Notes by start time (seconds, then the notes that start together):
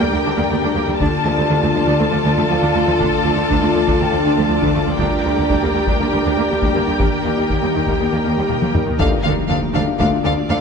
Already playing: A#3 D4 G4 A#4 D5 G5 A#5 D6
0.01 D2
0.12 D2 G3 D4
0.25 D2 G3 D4
0.37 D2 A#3
0.50 D2 G3 A#3
0.63 D2 G3 D4
0.75 D2 A#3 G4
0.88 D2 G3 D4
0.99 D2 D3 A3 D4 F4 A4 D5 A5, taiko
1.25 D2 F3 A3 A4 A5
1.38 D2 A3 D4
1.50 D2 D3 D4
1.62 D2 A3 D4
1.75 D2 F3 D4 D5
1.87 D2 D3 D4
2.00 D2 A3
2.12 D2 F3 A3
2.25 D2 D3 D4
2.37 D2 F3 A3
2.50 D2 F3 F4 F5
2.63 D2 D3 D4
2.75 D2 A3 D4
2.87 D2 F3 A3
3.00 D2 D3 D4, taiko
3.25 D2 F3 A3
3.37 D2 A3 D4
3.50 D2 D3 D4, taiko
3.62 D2 A3 D4
3.74 D2 F3 D4
3.87 D2 D3 D4, taiko
3.99 D2 A3 G5
4.12 D2 F3 A3
4.25 D2 D3 D4
4.37 D2 F3 A3
4.49 D2 F3
4.62 D2 D3 D4, taiko
4.74 D2 A3 D4
4.87 D2 F3 A3
4.99 D2 G3 A#3 D4 G4 A#4 G5, taiko
5.24 D2 G3 D4
5.37 D2 A#3 G4
5.50 D2 G3 D4, taiko
5.62 D2 A#3 G4
5.75 D2 G3 G4
5.87 D2 G3 D4, taiko
5.99 D2 A#3 D4
6.12 D2 G3 D4
6.24 D2 G3 D4
6.37 D2 A#3
6.49 D2 G3 A#3
6.62 D2 G3 D4, taiko
6.75 D2 A#3 G4
6.87 D2 G3 D4
6.99 D#2 D#3 A#3 D#4 A#4, taiko
7.25 D#2 D#3 A#3
7.37 D#2 G3 D#4
7.49 D#2 D#3 A#3, taiko
7.62 D#2 G3 D#4
7.74 D#2 D#3 D#4
7.87 D#2 D#3 A#3, taiko
8.00 D#2 G3 A#3
8.12 D#2 D#3 A#3
8.24 D#2 D#3 A#3
8.37 D#2 G3
8.49 D#2 D#3 G3, taiko mid
8.61 D#2 D#3 A#3, taiko high
8.74 D#2 G3 D#4, taiko low-mid
8.86 D#2 D#3 A#3, taiko low
8.99 D2 D3 A3 D4 F4 A4 D5 F5, taiko, impact
9.12 D4
9.24 D2 D4 A4 F5
9.37 F3
9.49 D2 D3 D4 A4 F5
9.62 F3
9.74 D2 A3 D4 A4 F5
9.87 D4
9.99 D2 D3 A3 D4 F4 A4 F5, taiko
10.12 D4
10.24 D2 A3 D4 A4 F5
10.37 D4
10.49 D2 D3 D4 A4 F5